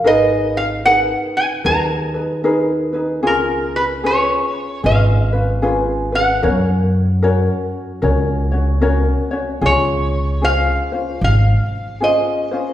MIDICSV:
0, 0, Header, 1, 4, 480
1, 0, Start_track
1, 0, Key_signature, 6, "major"
1, 0, Tempo, 797872
1, 31, Time_signature, 4, 2, 24, 8
1, 5789, Key_signature, -5, "major"
1, 7661, End_track
2, 0, Start_track
2, 0, Title_t, "Resonator guitar played with a steel bar"
2, 0, Program_c, 0, 25
2, 0, Note_on_c, 0, 82, 89
2, 43, Note_on_c, 0, 75, 80
2, 65, Note_off_c, 0, 82, 0
2, 344, Note_on_c, 0, 77, 81
2, 347, Note_off_c, 0, 75, 0
2, 390, Note_off_c, 0, 77, 0
2, 514, Note_on_c, 0, 78, 96
2, 595, Note_off_c, 0, 78, 0
2, 824, Note_on_c, 0, 80, 79
2, 870, Note_off_c, 0, 80, 0
2, 997, Note_on_c, 0, 82, 94
2, 1967, Note_on_c, 0, 70, 72
2, 1982, Note_off_c, 0, 82, 0
2, 2260, Note_off_c, 0, 70, 0
2, 2262, Note_on_c, 0, 71, 74
2, 2309, Note_off_c, 0, 71, 0
2, 2445, Note_on_c, 0, 73, 78
2, 2893, Note_off_c, 0, 73, 0
2, 2923, Note_on_c, 0, 77, 73
2, 3372, Note_off_c, 0, 77, 0
2, 3702, Note_on_c, 0, 78, 95
2, 5290, Note_off_c, 0, 78, 0
2, 5810, Note_on_c, 0, 73, 80
2, 6284, Note_on_c, 0, 77, 103
2, 6293, Note_off_c, 0, 73, 0
2, 6757, Note_off_c, 0, 77, 0
2, 6764, Note_on_c, 0, 77, 88
2, 7239, Note_off_c, 0, 77, 0
2, 7242, Note_on_c, 0, 75, 70
2, 7661, Note_off_c, 0, 75, 0
2, 7661, End_track
3, 0, Start_track
3, 0, Title_t, "Ukulele"
3, 0, Program_c, 1, 24
3, 25, Note_on_c, 1, 70, 78
3, 31, Note_on_c, 1, 63, 78
3, 33, Note_on_c, 1, 68, 81
3, 35, Note_on_c, 1, 71, 90
3, 504, Note_off_c, 1, 70, 0
3, 507, Note_off_c, 1, 63, 0
3, 509, Note_off_c, 1, 71, 0
3, 511, Note_on_c, 1, 70, 59
3, 514, Note_on_c, 1, 63, 66
3, 515, Note_off_c, 1, 68, 0
3, 517, Note_on_c, 1, 68, 64
3, 520, Note_on_c, 1, 71, 83
3, 980, Note_off_c, 1, 70, 0
3, 985, Note_off_c, 1, 71, 0
3, 986, Note_off_c, 1, 63, 0
3, 987, Note_on_c, 1, 70, 54
3, 993, Note_off_c, 1, 68, 0
3, 993, Note_on_c, 1, 63, 52
3, 996, Note_on_c, 1, 68, 61
3, 1000, Note_on_c, 1, 71, 52
3, 1281, Note_off_c, 1, 71, 0
3, 1285, Note_off_c, 1, 70, 0
3, 1287, Note_off_c, 1, 68, 0
3, 1288, Note_on_c, 1, 71, 49
3, 1290, Note_off_c, 1, 63, 0
3, 1294, Note_on_c, 1, 68, 42
3, 1298, Note_on_c, 1, 63, 35
3, 1460, Note_off_c, 1, 63, 0
3, 1465, Note_off_c, 1, 68, 0
3, 1465, Note_off_c, 1, 71, 0
3, 1467, Note_on_c, 1, 70, 78
3, 1468, Note_on_c, 1, 63, 80
3, 1472, Note_on_c, 1, 68, 79
3, 1476, Note_on_c, 1, 71, 88
3, 1754, Note_off_c, 1, 71, 0
3, 1759, Note_off_c, 1, 70, 0
3, 1762, Note_on_c, 1, 71, 57
3, 1763, Note_off_c, 1, 68, 0
3, 1770, Note_on_c, 1, 68, 55
3, 1771, Note_off_c, 1, 63, 0
3, 1777, Note_on_c, 1, 63, 53
3, 1934, Note_off_c, 1, 68, 0
3, 1939, Note_off_c, 1, 63, 0
3, 1939, Note_off_c, 1, 71, 0
3, 1941, Note_on_c, 1, 68, 86
3, 1942, Note_on_c, 1, 61, 80
3, 1946, Note_on_c, 1, 65, 85
3, 2420, Note_off_c, 1, 68, 0
3, 2427, Note_off_c, 1, 65, 0
3, 2427, Note_on_c, 1, 68, 71
3, 2428, Note_off_c, 1, 61, 0
3, 2430, Note_on_c, 1, 61, 64
3, 2434, Note_on_c, 1, 65, 66
3, 2436, Note_on_c, 1, 71, 77
3, 2899, Note_off_c, 1, 68, 0
3, 2906, Note_on_c, 1, 68, 54
3, 2910, Note_off_c, 1, 61, 0
3, 2910, Note_off_c, 1, 65, 0
3, 2913, Note_off_c, 1, 71, 0
3, 2913, Note_on_c, 1, 61, 52
3, 2917, Note_on_c, 1, 65, 59
3, 2920, Note_on_c, 1, 71, 57
3, 3195, Note_off_c, 1, 71, 0
3, 3203, Note_on_c, 1, 71, 52
3, 3204, Note_off_c, 1, 65, 0
3, 3208, Note_off_c, 1, 61, 0
3, 3210, Note_off_c, 1, 68, 0
3, 3211, Note_on_c, 1, 65, 43
3, 3216, Note_on_c, 1, 61, 36
3, 3377, Note_off_c, 1, 61, 0
3, 3380, Note_off_c, 1, 65, 0
3, 3381, Note_on_c, 1, 68, 72
3, 3383, Note_off_c, 1, 71, 0
3, 3384, Note_on_c, 1, 61, 84
3, 3387, Note_on_c, 1, 65, 83
3, 3390, Note_on_c, 1, 71, 87
3, 3675, Note_off_c, 1, 71, 0
3, 3680, Note_off_c, 1, 68, 0
3, 3683, Note_on_c, 1, 71, 52
3, 3688, Note_off_c, 1, 61, 0
3, 3690, Note_off_c, 1, 65, 0
3, 3695, Note_on_c, 1, 61, 42
3, 3861, Note_off_c, 1, 61, 0
3, 3862, Note_off_c, 1, 71, 0
3, 3864, Note_on_c, 1, 70, 82
3, 3868, Note_on_c, 1, 61, 84
3, 3869, Note_on_c, 1, 66, 73
3, 3873, Note_on_c, 1, 73, 86
3, 4339, Note_off_c, 1, 70, 0
3, 4346, Note_on_c, 1, 70, 78
3, 4349, Note_off_c, 1, 61, 0
3, 4349, Note_off_c, 1, 66, 0
3, 4352, Note_off_c, 1, 73, 0
3, 4352, Note_on_c, 1, 61, 70
3, 4355, Note_on_c, 1, 66, 89
3, 4355, Note_on_c, 1, 73, 86
3, 4816, Note_off_c, 1, 70, 0
3, 4824, Note_on_c, 1, 70, 56
3, 4825, Note_off_c, 1, 66, 0
3, 4827, Note_off_c, 1, 61, 0
3, 4830, Note_on_c, 1, 61, 64
3, 4832, Note_on_c, 1, 66, 65
3, 4833, Note_off_c, 1, 73, 0
3, 4835, Note_on_c, 1, 73, 67
3, 5116, Note_off_c, 1, 73, 0
3, 5123, Note_on_c, 1, 73, 55
3, 5124, Note_off_c, 1, 66, 0
3, 5128, Note_off_c, 1, 70, 0
3, 5131, Note_off_c, 1, 61, 0
3, 5132, Note_on_c, 1, 66, 49
3, 5138, Note_on_c, 1, 61, 49
3, 5298, Note_off_c, 1, 61, 0
3, 5300, Note_off_c, 1, 66, 0
3, 5302, Note_off_c, 1, 73, 0
3, 5303, Note_on_c, 1, 70, 83
3, 5305, Note_on_c, 1, 61, 90
3, 5308, Note_on_c, 1, 66, 85
3, 5309, Note_on_c, 1, 73, 78
3, 5593, Note_off_c, 1, 73, 0
3, 5601, Note_on_c, 1, 73, 63
3, 5602, Note_off_c, 1, 66, 0
3, 5604, Note_off_c, 1, 61, 0
3, 5607, Note_off_c, 1, 70, 0
3, 5609, Note_on_c, 1, 66, 54
3, 5612, Note_on_c, 1, 61, 53
3, 5780, Note_off_c, 1, 61, 0
3, 5783, Note_on_c, 1, 68, 75
3, 5784, Note_off_c, 1, 73, 0
3, 5785, Note_off_c, 1, 66, 0
3, 5787, Note_on_c, 1, 61, 76
3, 5787, Note_on_c, 1, 65, 81
3, 6263, Note_off_c, 1, 68, 0
3, 6266, Note_on_c, 1, 68, 50
3, 6267, Note_off_c, 1, 61, 0
3, 6270, Note_on_c, 1, 61, 57
3, 6272, Note_off_c, 1, 65, 0
3, 6274, Note_on_c, 1, 65, 54
3, 6277, Note_on_c, 1, 72, 58
3, 6562, Note_off_c, 1, 72, 0
3, 6567, Note_off_c, 1, 65, 0
3, 6568, Note_off_c, 1, 68, 0
3, 6569, Note_on_c, 1, 72, 53
3, 6570, Note_off_c, 1, 61, 0
3, 6575, Note_on_c, 1, 65, 46
3, 6582, Note_on_c, 1, 61, 44
3, 7222, Note_on_c, 1, 68, 51
3, 7225, Note_off_c, 1, 61, 0
3, 7227, Note_off_c, 1, 72, 0
3, 7228, Note_on_c, 1, 61, 57
3, 7231, Note_off_c, 1, 65, 0
3, 7233, Note_on_c, 1, 65, 62
3, 7236, Note_on_c, 1, 72, 63
3, 7521, Note_off_c, 1, 72, 0
3, 7526, Note_off_c, 1, 68, 0
3, 7527, Note_off_c, 1, 65, 0
3, 7528, Note_on_c, 1, 72, 52
3, 7529, Note_off_c, 1, 61, 0
3, 7534, Note_on_c, 1, 65, 53
3, 7540, Note_on_c, 1, 61, 49
3, 7661, Note_off_c, 1, 61, 0
3, 7661, Note_off_c, 1, 65, 0
3, 7661, Note_off_c, 1, 72, 0
3, 7661, End_track
4, 0, Start_track
4, 0, Title_t, "Upright bass"
4, 0, Program_c, 2, 32
4, 31, Note_on_c, 2, 32, 79
4, 655, Note_off_c, 2, 32, 0
4, 991, Note_on_c, 2, 39, 81
4, 1949, Note_off_c, 2, 39, 0
4, 1949, Note_on_c, 2, 37, 91
4, 2574, Note_off_c, 2, 37, 0
4, 2911, Note_on_c, 2, 32, 83
4, 3868, Note_on_c, 2, 42, 86
4, 3877, Note_off_c, 2, 32, 0
4, 4493, Note_off_c, 2, 42, 0
4, 4826, Note_on_c, 2, 37, 83
4, 5451, Note_off_c, 2, 37, 0
4, 5784, Note_on_c, 2, 37, 80
4, 6409, Note_off_c, 2, 37, 0
4, 6746, Note_on_c, 2, 32, 88
4, 6943, Note_off_c, 2, 32, 0
4, 7661, End_track
0, 0, End_of_file